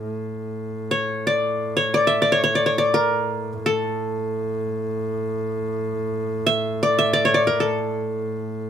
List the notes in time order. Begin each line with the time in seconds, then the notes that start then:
0.01 A2
0.91 C#5
1.27 D5
1.77 C#5
1.94 D5
2.07 E5
2.22 D5
2.32 C#5
2.44 C#5
2.55 D5
2.66 C#5
2.78 D5
2.94 A#4
3.66 A4
6.46 E5
6.83 D5
6.99 E5
7.13 D5
7.25 C#5
7.34 D5
7.47 A#4
7.60 A4